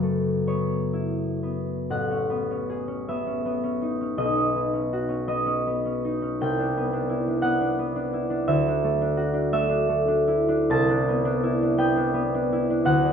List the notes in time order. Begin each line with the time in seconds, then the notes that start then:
Already playing: F#2 C#3 B3 C#4 B4 C#5
0.03 A3
0.47 B3 C#5
0.93 E4
1.43 B3
1.90 A1 F#5
2.11 C#4
2.30 B3
2.51 C#4
2.70 G#4
2.88 C#4
3.09 B3 E5
3.27 C#4
3.45 B3
3.64 C#4
3.82 D#4
4.01 C#4
4.18 B1 D#5
4.37 C#4
4.56 B3
4.74 C#4
4.93 F#4
5.09 C#4
5.27 B3 D#5
5.46 C#4
5.67 B3
5.85 C#4
6.05 D#4
6.22 C#4
6.41 C2 G5
6.59 D4
6.77 B3
6.93 D4
7.09 E4
7.27 D4
7.42 B3 F#5
7.61 D4
7.79 B3
7.96 D4
8.13 E4
8.30 D4
8.48 D2 E5
8.68 D4
8.84 A3
9.02 D4
9.17 F#4
9.34 D4
9.53 A3 E5
9.69 D4
9.89 A3
10.08 D4
10.27 E4
10.49 D4
10.70 C2 A5
10.89 D4
11.08 B3
11.25 D4
11.43 E4
11.62 D4
11.78 B3 G5
11.96 D4
12.14 B3
12.34 D4
12.53 E4
12.70 D4
12.85 D2 F#5
13.05 D4